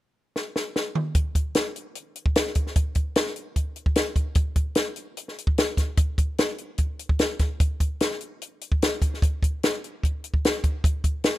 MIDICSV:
0, 0, Header, 1, 2, 480
1, 0, Start_track
1, 0, Tempo, 403226
1, 1365, Time_signature, 4, 2, 24, 8
1, 13547, End_track
2, 0, Start_track
2, 0, Title_t, "Drums"
2, 427, Note_on_c, 9, 38, 60
2, 546, Note_off_c, 9, 38, 0
2, 664, Note_on_c, 9, 38, 74
2, 783, Note_off_c, 9, 38, 0
2, 903, Note_on_c, 9, 38, 84
2, 1022, Note_off_c, 9, 38, 0
2, 1134, Note_on_c, 9, 45, 88
2, 1253, Note_off_c, 9, 45, 0
2, 1365, Note_on_c, 9, 42, 75
2, 1369, Note_on_c, 9, 36, 91
2, 1484, Note_off_c, 9, 42, 0
2, 1488, Note_off_c, 9, 36, 0
2, 1609, Note_on_c, 9, 36, 77
2, 1610, Note_on_c, 9, 42, 60
2, 1728, Note_off_c, 9, 36, 0
2, 1729, Note_off_c, 9, 42, 0
2, 1841, Note_on_c, 9, 42, 81
2, 1849, Note_on_c, 9, 38, 97
2, 1960, Note_off_c, 9, 42, 0
2, 1968, Note_off_c, 9, 38, 0
2, 2093, Note_on_c, 9, 42, 54
2, 2212, Note_off_c, 9, 42, 0
2, 2324, Note_on_c, 9, 42, 74
2, 2443, Note_off_c, 9, 42, 0
2, 2565, Note_on_c, 9, 42, 63
2, 2684, Note_off_c, 9, 42, 0
2, 2686, Note_on_c, 9, 36, 72
2, 2803, Note_on_c, 9, 42, 78
2, 2805, Note_off_c, 9, 36, 0
2, 2811, Note_on_c, 9, 38, 108
2, 2922, Note_off_c, 9, 42, 0
2, 2930, Note_off_c, 9, 38, 0
2, 2933, Note_on_c, 9, 38, 32
2, 3035, Note_on_c, 9, 42, 61
2, 3044, Note_on_c, 9, 36, 71
2, 3052, Note_off_c, 9, 38, 0
2, 3154, Note_off_c, 9, 42, 0
2, 3163, Note_off_c, 9, 36, 0
2, 3174, Note_on_c, 9, 38, 28
2, 3281, Note_on_c, 9, 42, 76
2, 3284, Note_on_c, 9, 36, 94
2, 3293, Note_off_c, 9, 38, 0
2, 3400, Note_off_c, 9, 42, 0
2, 3403, Note_off_c, 9, 36, 0
2, 3510, Note_on_c, 9, 42, 60
2, 3520, Note_on_c, 9, 36, 73
2, 3629, Note_off_c, 9, 42, 0
2, 3639, Note_off_c, 9, 36, 0
2, 3755, Note_on_c, 9, 42, 71
2, 3764, Note_on_c, 9, 38, 105
2, 3875, Note_off_c, 9, 42, 0
2, 3883, Note_off_c, 9, 38, 0
2, 3885, Note_on_c, 9, 38, 32
2, 3997, Note_on_c, 9, 42, 53
2, 4004, Note_off_c, 9, 38, 0
2, 4117, Note_off_c, 9, 42, 0
2, 4237, Note_on_c, 9, 42, 69
2, 4238, Note_on_c, 9, 36, 63
2, 4356, Note_off_c, 9, 42, 0
2, 4357, Note_off_c, 9, 36, 0
2, 4473, Note_on_c, 9, 42, 51
2, 4592, Note_off_c, 9, 42, 0
2, 4595, Note_on_c, 9, 36, 75
2, 4708, Note_on_c, 9, 42, 78
2, 4714, Note_off_c, 9, 36, 0
2, 4716, Note_on_c, 9, 38, 98
2, 4827, Note_off_c, 9, 42, 0
2, 4835, Note_off_c, 9, 38, 0
2, 4949, Note_on_c, 9, 36, 76
2, 4949, Note_on_c, 9, 42, 55
2, 5068, Note_off_c, 9, 36, 0
2, 5068, Note_off_c, 9, 42, 0
2, 5177, Note_on_c, 9, 42, 69
2, 5186, Note_on_c, 9, 36, 104
2, 5296, Note_off_c, 9, 42, 0
2, 5305, Note_off_c, 9, 36, 0
2, 5424, Note_on_c, 9, 42, 61
2, 5427, Note_on_c, 9, 36, 76
2, 5543, Note_off_c, 9, 42, 0
2, 5546, Note_off_c, 9, 36, 0
2, 5656, Note_on_c, 9, 42, 78
2, 5664, Note_on_c, 9, 38, 99
2, 5775, Note_off_c, 9, 42, 0
2, 5783, Note_off_c, 9, 38, 0
2, 5902, Note_on_c, 9, 42, 55
2, 6021, Note_off_c, 9, 42, 0
2, 6153, Note_on_c, 9, 42, 79
2, 6272, Note_off_c, 9, 42, 0
2, 6289, Note_on_c, 9, 38, 32
2, 6408, Note_off_c, 9, 38, 0
2, 6409, Note_on_c, 9, 42, 58
2, 6512, Note_on_c, 9, 36, 77
2, 6528, Note_off_c, 9, 42, 0
2, 6631, Note_off_c, 9, 36, 0
2, 6640, Note_on_c, 9, 42, 81
2, 6649, Note_on_c, 9, 38, 100
2, 6759, Note_off_c, 9, 42, 0
2, 6768, Note_off_c, 9, 38, 0
2, 6873, Note_on_c, 9, 36, 71
2, 6877, Note_on_c, 9, 42, 61
2, 6885, Note_on_c, 9, 38, 33
2, 6992, Note_off_c, 9, 36, 0
2, 6996, Note_off_c, 9, 42, 0
2, 7004, Note_off_c, 9, 38, 0
2, 7110, Note_on_c, 9, 42, 80
2, 7113, Note_on_c, 9, 36, 102
2, 7229, Note_off_c, 9, 42, 0
2, 7232, Note_off_c, 9, 36, 0
2, 7357, Note_on_c, 9, 36, 78
2, 7360, Note_on_c, 9, 42, 65
2, 7476, Note_off_c, 9, 36, 0
2, 7479, Note_off_c, 9, 42, 0
2, 7598, Note_on_c, 9, 42, 80
2, 7607, Note_on_c, 9, 38, 106
2, 7717, Note_off_c, 9, 42, 0
2, 7726, Note_off_c, 9, 38, 0
2, 7836, Note_on_c, 9, 42, 49
2, 7955, Note_off_c, 9, 42, 0
2, 8068, Note_on_c, 9, 42, 67
2, 8078, Note_on_c, 9, 36, 71
2, 8187, Note_off_c, 9, 42, 0
2, 8197, Note_off_c, 9, 36, 0
2, 8324, Note_on_c, 9, 42, 55
2, 8443, Note_off_c, 9, 42, 0
2, 8444, Note_on_c, 9, 36, 73
2, 8559, Note_on_c, 9, 42, 70
2, 8563, Note_off_c, 9, 36, 0
2, 8567, Note_on_c, 9, 38, 97
2, 8678, Note_off_c, 9, 42, 0
2, 8686, Note_off_c, 9, 38, 0
2, 8800, Note_on_c, 9, 42, 55
2, 8804, Note_on_c, 9, 36, 77
2, 8808, Note_on_c, 9, 38, 34
2, 8919, Note_off_c, 9, 42, 0
2, 8923, Note_off_c, 9, 36, 0
2, 8927, Note_off_c, 9, 38, 0
2, 9046, Note_on_c, 9, 42, 75
2, 9048, Note_on_c, 9, 36, 96
2, 9165, Note_off_c, 9, 42, 0
2, 9167, Note_off_c, 9, 36, 0
2, 9288, Note_on_c, 9, 42, 59
2, 9289, Note_on_c, 9, 36, 76
2, 9407, Note_off_c, 9, 42, 0
2, 9408, Note_off_c, 9, 36, 0
2, 9527, Note_on_c, 9, 42, 72
2, 9536, Note_on_c, 9, 38, 97
2, 9646, Note_off_c, 9, 42, 0
2, 9655, Note_off_c, 9, 38, 0
2, 9655, Note_on_c, 9, 38, 31
2, 9768, Note_on_c, 9, 42, 51
2, 9774, Note_off_c, 9, 38, 0
2, 9887, Note_off_c, 9, 42, 0
2, 10018, Note_on_c, 9, 42, 72
2, 10137, Note_off_c, 9, 42, 0
2, 10254, Note_on_c, 9, 42, 56
2, 10373, Note_off_c, 9, 42, 0
2, 10376, Note_on_c, 9, 36, 75
2, 10495, Note_off_c, 9, 36, 0
2, 10502, Note_on_c, 9, 42, 85
2, 10510, Note_on_c, 9, 38, 110
2, 10621, Note_off_c, 9, 42, 0
2, 10629, Note_off_c, 9, 38, 0
2, 10733, Note_on_c, 9, 36, 72
2, 10736, Note_on_c, 9, 42, 61
2, 10852, Note_off_c, 9, 36, 0
2, 10855, Note_off_c, 9, 42, 0
2, 10879, Note_on_c, 9, 38, 31
2, 10979, Note_on_c, 9, 36, 96
2, 10990, Note_on_c, 9, 42, 75
2, 10998, Note_off_c, 9, 38, 0
2, 11098, Note_off_c, 9, 36, 0
2, 11109, Note_off_c, 9, 42, 0
2, 11220, Note_on_c, 9, 36, 80
2, 11234, Note_on_c, 9, 42, 64
2, 11339, Note_off_c, 9, 36, 0
2, 11353, Note_off_c, 9, 42, 0
2, 11466, Note_on_c, 9, 42, 76
2, 11474, Note_on_c, 9, 38, 100
2, 11585, Note_off_c, 9, 42, 0
2, 11593, Note_off_c, 9, 38, 0
2, 11713, Note_on_c, 9, 42, 53
2, 11832, Note_off_c, 9, 42, 0
2, 11945, Note_on_c, 9, 36, 72
2, 11959, Note_on_c, 9, 42, 69
2, 12064, Note_off_c, 9, 36, 0
2, 12078, Note_off_c, 9, 42, 0
2, 12188, Note_on_c, 9, 42, 59
2, 12304, Note_on_c, 9, 36, 70
2, 12307, Note_off_c, 9, 42, 0
2, 12423, Note_off_c, 9, 36, 0
2, 12435, Note_on_c, 9, 42, 75
2, 12443, Note_on_c, 9, 38, 104
2, 12554, Note_off_c, 9, 42, 0
2, 12562, Note_off_c, 9, 38, 0
2, 12663, Note_on_c, 9, 36, 76
2, 12664, Note_on_c, 9, 42, 61
2, 12783, Note_off_c, 9, 36, 0
2, 12783, Note_off_c, 9, 42, 0
2, 12905, Note_on_c, 9, 36, 92
2, 12912, Note_on_c, 9, 42, 72
2, 13024, Note_off_c, 9, 36, 0
2, 13031, Note_off_c, 9, 42, 0
2, 13143, Note_on_c, 9, 36, 74
2, 13143, Note_on_c, 9, 42, 61
2, 13262, Note_off_c, 9, 36, 0
2, 13262, Note_off_c, 9, 42, 0
2, 13377, Note_on_c, 9, 42, 74
2, 13385, Note_on_c, 9, 38, 99
2, 13496, Note_off_c, 9, 42, 0
2, 13504, Note_off_c, 9, 38, 0
2, 13547, End_track
0, 0, End_of_file